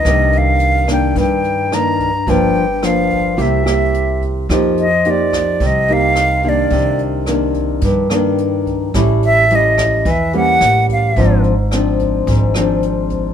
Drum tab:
HH |xxxxxxxx|xxxxxxxx|xxxxxxxx|xxxxxxxx|
SD |r--r--r-|--r--r--|r--r--r-|--r--r--|
BD |o--oo--o|o--oo--o|o--oo--o|o--oo--o|

HH |xxxxxxxx|xxxxxxxx|
SD |r--r--r-|--r--r--|
BD |o--oo--o|o--oo--o|